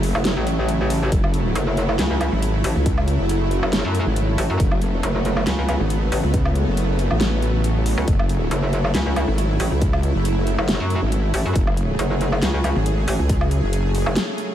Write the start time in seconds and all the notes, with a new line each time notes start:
Already playing: F#1 C#3 F#3 A3 E4
0.03 open hi-hat
0.15 F#1, low woodblock
0.25 snare, closed hi-hat
0.37 A1
0.47 closed hi-hat
0.69 closed hi-hat
0.90 open hi-hat
1.12 F#1 E4, kick, closed hi-hat
1.24 low woodblock
1.34 closed hi-hat
1.55 F#1, closed hi-hat
1.77 closed hi-hat
1.89 low woodblock
1.99 C#2, snare, closed hi-hat
2.21 closed hi-hat, low woodblock
2.32 G#1
2.42 closed hi-hat
2.64 A1, open hi-hat
2.76 C#2
2.86 kick, closed hi-hat
2.98 low woodblock
3.08 closed hi-hat
3.19 F#1
3.29 closed hi-hat
3.51 closed hi-hat
3.63 F#1, low woodblock
3.73 snare, closed hi-hat
3.85 F#2
3.95 closed hi-hat
4.06 G#1
4.16 closed hi-hat
4.38 A1, open hi-hat
4.50 F#2
4.60 F#1 B3, kick, closed hi-hat
4.71 low woodblock
4.82 closed hi-hat
5.03 F#1, closed hi-hat
5.25 closed hi-hat
5.37 low woodblock
5.47 C#2, snare, closed hi-hat
5.69 closed hi-hat, low woodblock
5.80 G#1
5.90 closed hi-hat
6.12 A1, open hi-hat
6.24 C#2
6.34 kick, closed hi-hat
6.45 low woodblock
6.55 closed hi-hat
6.67 F#1
6.77 closed hi-hat
6.99 closed hi-hat
7.11 A1, low woodblock
7.21 snare, closed hi-hat
7.42 closed hi-hat
7.64 closed hi-hat
7.86 open hi-hat
7.98 C#2
8.08 F#1 E4, kick, closed hi-hat
8.19 low woodblock
8.29 closed hi-hat
8.51 F#1, closed hi-hat
8.73 closed hi-hat
8.85 low woodblock
8.95 C#2, snare, closed hi-hat
9.16 closed hi-hat, low woodblock
9.28 G#1
9.38 closed hi-hat
9.60 A1, open hi-hat
9.72 C#2
9.82 kick, closed hi-hat
9.93 low woodblock
10.03 closed hi-hat
10.15 F#1
10.25 closed hi-hat
10.47 closed hi-hat
10.59 F#1, low woodblock
10.69 snare, closed hi-hat
10.80 F#2
10.90 closed hi-hat
11.02 G#1
11.12 closed hi-hat
11.34 A1, open hi-hat
11.46 F#2
11.56 F#1 G#4, kick, closed hi-hat
11.67 low woodblock
11.77 closed hi-hat
11.99 F#1, closed hi-hat
12.21 closed hi-hat
12.32 low woodblock
12.42 C#2, snare, closed hi-hat
12.64 closed hi-hat, low woodblock
12.76 G#1
12.86 closed hi-hat
13.08 A1, open hi-hat
13.19 C#2
13.29 kick, closed hi-hat
13.41 low woodblock
13.51 closed hi-hat
13.63 F#1
13.73 closed hi-hat
13.95 open hi-hat
14.06 F#1, low woodblock
14.16 snare, closed hi-hat
14.38 closed hi-hat